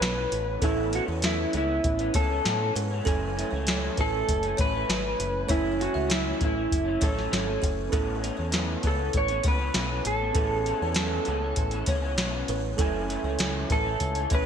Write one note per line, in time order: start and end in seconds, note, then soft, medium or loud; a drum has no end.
0.00 0.25 B1 medium
0.00 0.16 A2 medium
0.00 0.17 E3 medium
0.00 0.57 B3 medium
0.00 0.16 B3 medium
0.00 0.58 C#4 medium
0.00 0.14 C#4 medium
0.00 0.58 E4 medium
0.00 0.59 A4 medium
0.00 0.65 B4 medium
0.00 snare loud
0.00 closed hi-hat medium
0.15 0.61 E3 soft
0.15 0.62 B3 soft
0.15 0.62 C#4 soft
0.32 0.56 A1 medium
0.32 closed hi-hat medium
0.59 0.99 A1 medium
0.59 0.91 A2 medium
0.59 0.93 E3 medium
0.59 3.01 B3 medium
0.59 0.93 B3 medium
0.59 3.01 C#4 medium
0.59 3.03 E4 medium
0.59 0.76 A4 medium
0.59 kick medium
0.59 closed hi-hat medium
0.64 0.93 C#4 medium
0.64 0.94 E4 medium
0.64 3.03 A4 medium
0.93 1.08 A2 medium
0.93 1.08 E3 medium
0.93 1.08 B3 medium
0.93 1.07 C#4 medium
0.93 1.03 F#4 medium
0.93 closed hi-hat medium
1.08 1.45 E2 medium
1.08 1.23 E3 soft
1.08 1.23 B3 soft
1.08 1.23 C#4 soft
1.08 1.51 B4 medium
1.22 1.51 A2 medium
1.22 1.53 E3 medium
1.22 1.54 B3 medium
1.22 1.54 C#4 medium
1.22 1.56 E4 medium
1.22 snare loud
1.22 closed hi-hat medium
1.52 1.78 C#2 medium
1.52 1.68 A2 medium
1.52 1.69 E3 medium
1.52 1.69 B3 medium
1.52 1.67 C#4 medium
1.52 closed hi-hat medium
1.57 2.12 E4 medium
1.68 2.00 E3 soft
1.68 1.99 B3 soft
1.68 1.97 C#4 soft
1.84 2.09 A1 medium
1.84 kick medium
1.84 closed hi-hat medium
1.98 2.13 E3 soft
1.98 2.14 B3 soft
1.98 2.14 C#4 soft
1.98 closed hi-hat soft
2.13 2.39 C#2 medium
2.13 2.29 A2 soft
2.13 2.30 E3 soft
2.13 2.30 B3 medium
2.13 2.28 C#4 medium
2.13 2.72 A4 medium
2.13 2.44 C#5 medium
2.13 kick medium
2.13 closed hi-hat medium
2.29 2.44 E3 soft
2.29 2.45 B3 soft
2.29 2.45 C#4 soft
2.44 2.60 A2 medium
2.44 2.70 A2 loud
2.44 2.60 E3 medium
2.44 2.60 B3 medium
2.44 2.59 C#4 medium
2.44 snare medium
2.44 closed hi-hat medium
2.60 2.92 E3 soft
2.60 2.91 B3 soft
2.60 2.89 C#4 soft
2.76 3.00 G#2 medium
2.76 2.90 B4 medium
2.76 closed hi-hat medium
2.91 3.06 E3 soft
2.91 3.07 B3 soft
2.91 3.06 C#4 medium
3.04 3.43 F#1 medium
3.04 3.35 F#2 medium
3.04 3.36 E3 medium
3.04 5.44 A3 medium
3.04 3.37 A3 medium
3.04 5.45 C#4 medium
3.04 5.46 E4 medium
3.04 3.20 A4 medium
3.04 kick loud
3.04 closed hi-hat medium
3.08 3.37 C#4 medium
3.08 5.47 G#5 medium
3.36 3.52 F#2 medium
3.36 3.52 E3 medium
3.36 3.53 A3 medium
3.36 3.51 C#4 medium
3.36 closed hi-hat medium
3.51 3.89 C#2 medium
3.51 3.68 A3 soft
3.51 3.67 C#4 medium
3.51 3.66 C#5 medium
3.56 3.67 E3 soft
3.67 3.96 F#2 medium
3.67 3.98 E3 medium
3.67 3.98 A3 medium
3.67 3.99 C#4 medium
3.67 snare loud
3.67 closed hi-hat medium
3.97 4.22 A1 medium
3.97 4.13 F#2 medium
3.97 4.13 E3 medium
3.97 4.14 A3 medium
3.97 4.11 C#4 medium
3.97 4.60 A4 medium
3.97 4.40 B4 medium
3.97 kick medium
3.97 closed hi-hat medium
4.13 4.45 E3 soft
4.13 4.44 A3 soft
4.13 4.43 C#4 soft
4.29 4.53 F#1 medium
4.29 kick medium
4.29 closed hi-hat medium
4.43 4.58 E3 soft
4.43 4.60 A3 soft
4.43 4.59 C#4 soft
4.43 closed hi-hat soft
4.57 4.83 A1 medium
4.57 4.73 F#2 soft
4.57 4.74 E3 soft
4.57 4.74 A3 medium
4.57 5.54 B4 medium
4.57 4.72 C#5 medium
4.57 kick loud
4.57 closed hi-hat medium
4.61 4.73 C#4 soft
4.74 4.88 E3 soft
4.74 4.89 A3 soft
4.74 4.89 C#4 medium
4.89 5.13 G#1 medium
4.89 5.04 F#2 medium
4.89 5.04 E3 medium
4.89 5.03 A3 medium
4.89 5.02 C#4 medium
4.89 snare loud
4.89 closed hi-hat medium
5.03 5.48 E3 soft
5.03 5.49 A3 soft
5.03 5.49 C#4 medium
5.20 5.44 F#1 medium
5.20 closed hi-hat medium
5.47 5.86 F#1 medium
5.47 5.77 F#2 medium
5.47 5.78 E3 medium
5.47 7.88 A3 medium
5.47 5.79 A3 medium
5.47 7.89 C#4 medium
5.47 5.80 C#4 medium
5.47 7.89 E4 medium
5.47 5.81 E4 medium
5.47 5.64 C#5 medium
5.47 kick loud
5.47 closed hi-hat medium
5.52 7.90 G#5 medium
5.78 5.94 F#2 medium
5.78 5.95 E3 medium
5.78 5.94 A3 medium
5.78 5.92 C#4 medium
5.78 6.12 F#4 medium
5.78 closed hi-hat medium
5.93 6.32 C#2 medium
5.93 6.07 E3 soft
5.93 6.08 A3 soft
5.93 6.09 C#4 soft
5.93 6.38 E5 medium
6.07 6.37 F#2 medium
6.07 6.39 E3 medium
6.07 6.40 A3 medium
6.07 6.40 C#4 medium
6.07 snare loud
6.07 closed hi-hat medium
6.12 6.43 E4 medium
6.38 6.66 A1 medium
6.38 6.55 F#2 medium
6.38 6.56 E3 medium
6.38 6.55 A3 medium
6.38 6.53 C#4 medium
6.38 kick medium
6.38 closed hi-hat medium
6.44 7.05 E4 medium
6.55 6.87 E3 soft
6.55 6.86 A3 soft
6.55 6.83 C#4 soft
6.72 6.96 F#1 medium
6.72 kick medium
6.72 closed hi-hat medium
6.84 6.99 E3 soft
6.84 7.00 A3 soft
6.84 7.01 C#4 medium
6.99 7.27 A1 medium
6.99 7.16 F#2 soft
6.99 7.16 E3 medium
6.99 7.15 A3 soft
6.99 7.13 C#4 medium
6.99 7.30 C#5 medium
6.99 kick loud
6.99 closed hi-hat medium
7.03 7.60 A4 medium
7.14 7.30 E3 soft
7.14 7.31 A3 medium
7.14 7.31 C#4 soft
7.19 snare soft
7.30 7.57 G#1 medium
7.30 7.47 F#2 medium
7.30 7.47 E3 medium
7.30 7.47 A3 medium
7.30 7.45 C#4 medium
7.30 snare medium
7.30 closed hi-hat medium
7.46 7.92 E3 soft
7.46 7.93 A3 soft
7.46 7.92 C#4 medium
7.62 7.87 F#1 medium
7.62 7.77 A4 medium
7.62 kick medium
7.62 closed hi-hat medium
7.90 8.30 A1 medium
7.90 8.20 A2 medium
7.90 8.22 E3 medium
7.90 10.31 B3 medium
7.90 8.23 B3 medium
7.90 10.32 C#4 medium
7.90 10.33 E4 medium
7.90 8.07 A4 loud
7.90 kick loud
7.90 closed hi-hat medium
7.94 8.23 C#4 medium
7.94 10.33 A4 medium
8.22 8.38 A2 medium
8.22 8.38 E3 medium
8.22 8.37 B3 medium
8.22 8.36 C#4 medium
8.22 closed hi-hat medium
8.37 8.75 E2 medium
8.37 8.51 E3 soft
8.37 8.52 B3 soft
8.37 8.53 C#4 medium
8.37 8.52 C#5 soft
8.52 8.81 A2 medium
8.52 8.82 E3 medium
8.52 8.83 B3 medium
8.52 8.84 C#4 medium
8.52 snare loud
8.52 closed hi-hat medium
8.82 9.09 C#2 medium
8.82 8.98 A2 soft
8.82 8.99 E3 medium
8.82 8.98 B3 medium
8.82 8.96 C#4 medium
8.82 9.27 B4 medium
8.82 kick medium
8.82 closed hi-hat soft
8.87 9.17 A4 medium
8.97 9.31 E3 soft
8.97 9.29 B3 soft
8.97 9.28 C#4 soft
9.13 9.39 A1 medium
9.13 9.47 C#5 loud
9.13 kick medium
9.13 closed hi-hat medium
9.28 9.44 E3 soft
9.28 9.45 B3 soft
9.28 9.45 C#4 soft
9.28 closed hi-hat soft
9.44 9.69 C#2 medium
9.44 9.60 A2 soft
9.44 9.60 E3 medium
9.44 9.59 B3 medium
9.44 9.57 C#4 soft
9.44 9.59 C#5 medium
9.44 kick loud
9.44 closed hi-hat medium
9.48 10.06 B4 medium
9.59 9.73 E3 soft
9.59 9.74 B3 soft
9.59 9.75 C#4 medium
9.74 10.00 B1 medium
9.74 9.90 A2 medium
9.74 9.90 E3 medium
9.74 9.89 B3 medium
9.74 9.87 C#4 medium
9.74 snare medium
9.74 closed hi-hat medium
9.88 10.22 E3 soft
9.88 10.21 B3 soft
9.88 10.19 C#4 soft
10.05 10.30 A1 medium
10.05 11.85 A4 medium
10.05 closed hi-hat medium
10.20 10.34 E3 soft
10.20 10.35 B3 soft
10.20 10.36 C#4 soft
10.33 10.72 A1 medium
10.33 10.64 A2 medium
10.33 10.66 E3 medium
10.33 12.74 B3 medium
10.33 10.67 B3 medium
10.33 12.75 C#4 medium
10.33 12.75 E4 medium
10.33 10.51 A4 medium
10.33 kick loud
10.33 closed hi-hat medium
10.38 10.67 C#4 medium
10.38 10.44 G#4 medium
10.44 12.80 A4 medium
10.65 10.81 A2 medium
10.65 10.82 E3 medium
10.65 10.81 B3 medium
10.65 10.79 C#4 medium
10.65 closed hi-hat medium
10.81 11.19 E2 medium
10.81 10.96 E3 soft
10.81 10.96 B3 soft
10.81 10.97 C#4 medium
10.81 11.25 B4 medium
10.95 11.25 A2 medium
10.95 11.26 E3 medium
10.95 11.27 B3 medium
10.95 snare loud
10.95 closed hi-hat medium
10.99 11.28 C#4 medium
11.25 11.52 C#2 medium
11.25 11.42 A2 medium
11.25 11.43 E3 medium
11.25 11.42 B3 medium
11.25 closed hi-hat medium
11.29 11.40 C#4 medium
11.41 11.73 E3 soft
11.41 11.72 B3 soft
11.41 11.70 C#4 soft
11.56 11.82 A1 medium
11.56 kick medium
11.56 closed hi-hat medium
11.71 11.85 E3 medium
11.71 11.87 B3 soft
11.71 11.88 C#4 medium
11.71 closed hi-hat soft
11.86 12.18 C#2 medium
11.86 12.02 A2 medium
11.86 12.03 E3 medium
11.86 12.03 B3 medium
11.86 12.01 C#4 medium
11.86 12.17 C#5 medium
11.86 kick loud
11.86 closed hi-hat medium
12.02 12.17 E3 soft
12.02 12.18 B3 medium
12.02 12.18 C#4 medium
12.17 12.43 B1 medium
12.17 12.33 A2 medium
12.17 12.34 E3 medium
12.17 12.33 B3 medium
12.17 12.31 C#4 loud
12.17 snare loud
12.17 closed hi-hat medium
12.32 12.78 E3 soft
12.32 12.80 B3 medium
12.32 12.79 C#4 medium
12.48 12.73 A1 medium
12.48 12.64 B4 medium
12.48 closed hi-hat medium
12.77 13.16 F#1 loud
12.77 13.08 F#2 medium
12.77 13.09 E3 medium
12.77 14.46 A3 medium
12.77 13.10 A3 medium
12.77 14.46 C#4 medium
12.77 14.46 E4 medium
12.77 12.93 A4 medium
12.77 kick loud
12.77 closed hi-hat medium
12.81 13.11 C#4 medium
12.81 14.46 G#5 medium
13.09 13.25 F#2 medium
13.09 13.25 E3 medium
13.09 13.25 A3 medium
13.09 13.23 C#4 medium
13.09 closed hi-hat medium
13.24 13.37 C#2 medium
13.24 13.39 E3 soft
13.24 13.40 A3 medium
13.24 13.40 C#4 medium
13.24 13.39 C#5 medium
13.39 13.64 C#2 medium
13.39 13.69 F#2 medium
13.39 13.70 E3 medium
13.39 13.71 A3 medium
13.39 13.72 C#4 medium
13.39 snare loud
13.39 closed hi-hat medium
13.70 13.95 A1 medium
13.70 13.86 F#2 medium
13.70 13.86 E3 medium
13.70 13.86 A3 medium
13.70 13.84 C#4 medium
13.70 14.28 A4 medium
13.70 14.14 B4 medium
13.70 kick medium
13.70 closed hi-hat medium
13.85 14.17 E3 soft
13.85 14.16 A3 soft
13.85 14.14 C#4 soft
14.00 14.25 C#2 medium
14.00 kick medium
14.00 closed hi-hat medium
14.15 14.32 A3 soft
14.15 14.31 C#4 medium
14.15 closed hi-hat soft
14.19 14.31 E3 soft
14.30 14.46 B1 medium
14.30 14.46 F#2 medium
14.30 14.46 E3 medium
14.30 14.46 A3 medium
14.30 14.45 C#4 medium
14.30 14.46 C#5 medium
14.30 kick loud
14.30 closed hi-hat medium
14.35 14.46 B4 medium